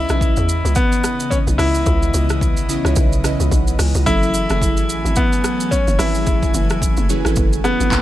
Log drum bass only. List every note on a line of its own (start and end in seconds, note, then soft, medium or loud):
0.10 0.35 B1 medium
0.37 0.63 E2 medium
0.65 0.75 C#2 loud
1.47 1.58 B1 medium
1.59 1.84 C#2 medium
1.86 2.12 C#2 loud
2.14 2.59 C#2 loud
2.57 2.83 B1 medium
2.85 2.96 C#2 medium
2.96 3.37 B1 loud
3.40 3.51 C#2 medium
3.52 3.77 B1 loud
3.79 3.94 C#2 loud
3.95 4.06 C#2 loud
4.07 4.47 F#1 loud
4.50 4.79 F#1 loud
4.77 5.03 A1 loud
5.05 5.16 G#1 loud
5.88 5.98 F#1 loud
5.99 6.28 G#1 loud
6.27 6.52 F#1 loud
6.54 6.94 F#1 loud
6.98 7.23 F#1 loud
7.25 7.36 G#1 medium
7.37 7.77 F#1 loud
7.80 7.91 G#1 medium
7.92 8.02 F#1 loud